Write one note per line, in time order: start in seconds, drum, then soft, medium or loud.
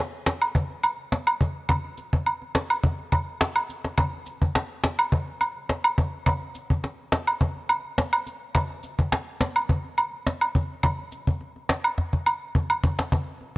0.26 cajon slap loud
0.26 cabasa medium
0.42 high woodblock medium
0.55 cajon bass medium
0.70 cajon slap soft
0.83 cajon slap soft
0.83 cabasa medium
0.83 high woodblock medium
1.12 cajon slap loud
1.27 high woodblock medium
1.41 cajon bass medium
1.41 cabasa medium
1.69 cajon bass loud
1.69 high woodblock medium
1.84 cajon slap soft
1.98 cajon slap soft
1.98 cabasa medium
2.13 cajon bass medium
2.26 cajon slap medium
2.26 high woodblock medium
2.42 cajon slap soft
2.55 cajon slap loud
2.55 cabasa medium
2.70 high woodblock medium
2.84 cajon bass medium
2.99 cajon slap soft
3.12 cajon bass medium
3.12 cabasa medium
3.12 high woodblock medium
3.41 cajon slap loud
3.56 cajon slap soft
3.56 high woodblock medium
3.69 cajon slap soft
3.69 cabasa medium
3.84 cajon slap medium
3.98 cajon bass loud
3.98 high woodblock medium
4.13 cajon slap soft
4.26 cajon slap soft
4.26 cabasa medium
4.42 cajon bass medium
4.55 cajon slap loud
4.84 cajon slap loud
4.84 cabasa medium
4.99 high woodblock medium
5.12 cajon bass medium
5.27 cajon slap soft
5.41 cajon slap soft
5.41 cabasa medium
5.41 high woodblock medium
5.69 cajon slap medium
5.84 high woodblock medium
5.98 cajon bass medium
5.98 cabasa medium
6.26 cajon bass loud
6.26 high woodblock medium
6.42 cajon slap soft
6.55 cajon slap soft
6.55 cabasa medium
6.70 cajon bass medium
6.84 cajon slap medium
7.12 cajon slap loud
7.12 cabasa medium
7.27 high woodblock medium
7.41 cajon bass medium
7.56 cajon slap soft
7.69 cajon slap soft
7.69 cabasa medium
7.69 high woodblock medium
7.98 cajon slap loud
8.13 high woodblock medium
8.27 cajon slap soft
8.27 cabasa medium
8.55 cajon bass loud
8.55 high woodblock medium
8.70 cajon slap soft
8.83 cajon slap soft
8.83 cabasa medium
8.99 cajon bass medium
9.12 cajon slap loud
9.41 cajon slap loud
9.41 cabasa medium
9.56 high woodblock medium
9.69 cajon bass medium
9.84 cajon slap soft
9.98 cajon slap soft
9.98 cabasa medium
9.98 high woodblock medium
10.27 cajon slap medium
10.41 high woodblock medium
10.55 cajon bass medium
10.55 cabasa medium
10.83 cajon bass loud
10.83 high woodblock medium
10.99 cajon slap soft
11.12 cajon slap soft
11.12 cabasa medium
11.27 cajon bass medium
11.41 cajon slap medium
11.56 cajon slap soft
11.69 cajon slap loud
11.69 cabasa medium
11.84 high woodblock medium
11.98 cajon bass medium
11.98 cajon slap soft
12.13 cajon bass medium
12.26 cajon slap soft
12.26 cabasa medium
12.26 high woodblock medium
12.55 cajon bass medium
12.70 cajon slap soft
12.70 high woodblock medium
12.84 cajon bass loud
12.84 cabasa medium
12.99 cajon slap loud
13.12 cajon bass loud
13.27 cajon slap soft
13.41 cajon slap soft